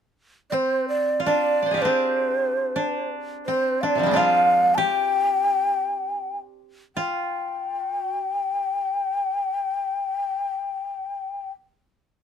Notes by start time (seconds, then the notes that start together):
0.50 C4 C5 D5
0.88 D5
1.20 F4
1.25 D4 D5
1.62 C5 D5
1.71 G4 G#4
1.77 F4
1.81 C4 D4 C5
2.76 D4
3.46 C4 C5
3.81 D4 D5 F5
3.95 C3 D3 F3
4.03 G3 G#3
4.11 C4 D4
4.16 F4 F5
4.75 G4 G5 A5
6.96 F4 G5
7.78 F#4
8.31 G4